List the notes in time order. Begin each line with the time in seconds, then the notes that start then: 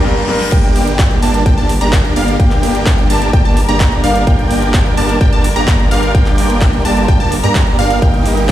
Already playing: G2 A#3 D4 G4 A#4, reverse cymbal
0.04 G2 A#3 D4 G4 A#4, snare
0.17 snare
0.28 G2 A#3 D4 G4 A#4, snare
0.41 snare
0.52 G1 D3 G3 A#3 D4 G4 A#4 D5 G5, kick, closed hi-hat, crash
0.64 closed hi-hat
0.76 open hi-hat
0.87 closed hi-hat
0.99 kick, clap, closed hi-hat
1.11 closed hi-hat
1.22 G1 A#3 D4 G4 D5 A5, open hi-hat
1.34 closed hi-hat
1.46 G1 A#3 D4 G4 D5 G5, kick, closed hi-hat
1.58 G1 A#3 D4 G4 D5 A5, closed hi-hat
1.69 open hi-hat
1.81 G1 A#3 D4 G4 D5 A#5, closed hi-hat
1.93 kick, clap, closed hi-hat
2.05 closed hi-hat
2.16 G1 A#3 D4 G4 D5 F5, open hi-hat
2.28 closed hi-hat
2.40 G1 A#3 D4 G4 D5 G5, kick, closed hi-hat
2.51 clap, closed hi-hat
2.63 open hi-hat
2.75 closed hi-hat
2.86 kick, clap, closed hi-hat
2.98 closed hi-hat
3.10 G1 A#3 D4 G4 D5 A5, open hi-hat
3.22 closed hi-hat
3.33 G1 A#3 D4 G4 D5 G5, kick, closed hi-hat
3.45 G1 A#3 D4 G4 D5 A5, closed hi-hat
3.57 open hi-hat
3.69 G1 A#3 D4 G4 D5 A#5, closed hi-hat
3.80 kick, clap, closed hi-hat
3.92 closed hi-hat
4.04 G1 A#3 D4 G4 D5 F5, open hi-hat
4.15 closed hi-hat
4.27 G1 A#3 D4 F4 G4 D5 G5, kick, closed hi-hat
4.39 closed hi-hat
4.51 open hi-hat
4.62 closed hi-hat
4.74 kick, clap, closed hi-hat
4.86 closed hi-hat
4.97 G1 A#3 D4 G4 D5 A5, open hi-hat
5.09 closed hi-hat
5.21 G1 A#3 D4 G4 D5 G5, kick, closed hi-hat
5.33 G1 A#3 D4 G4 D5 A5, closed hi-hat
5.44 open hi-hat
5.56 G1 A#3 D4 G4 D5 A#5, closed hi-hat
5.68 kick, clap, closed hi-hat
5.80 closed hi-hat
5.91 G1 A#3 D4 G4 D5 F5, open hi-hat
6.03 closed hi-hat
6.15 G1 A#3 D4 G4 D5 G5, kick, closed hi-hat
6.26 clap, closed hi-hat
6.38 open hi-hat
6.50 closed hi-hat
6.61 kick, clap, closed hi-hat
6.73 closed hi-hat
6.85 G1 A#3 D4 G4 D5 A5, open hi-hat
6.97 closed hi-hat
7.08 G1 A#3 D4 G4 D5 G5, kick, closed hi-hat
7.20 G1 A#3 D4 G4 D5 A5, closed hi-hat
7.32 open hi-hat
7.44 G2 A#3 D4 G4 D5 A#5, closed hi-hat
7.55 kick, clap, closed hi-hat
7.67 closed hi-hat
7.79 G1 A#3 D4 G4 D5 F5, open hi-hat
7.90 closed hi-hat
8.02 G1 D#3 A#3 D#4 G4 D#5 G5, kick, closed hi-hat
8.14 closed hi-hat
8.26 open hi-hat
8.37 closed hi-hat